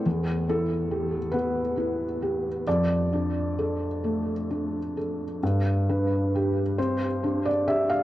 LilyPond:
\new Staff \with { instrumentName = "Felt piano" } { \time 6/8 \key d \dorian \tempo 4. = 44 << { r8 a'4 b'4. | d''2~ d''8 r8 | r8 b'4 c''8. d''16 e''16 f''16 | } \\ { e,8 e'8 g'8 b8 e'8 g'8 | f,8 d'8 a'8 a8 d'8 a'8 | g,8 d'8 g'8 c'8 d'8 g'8 | } >> }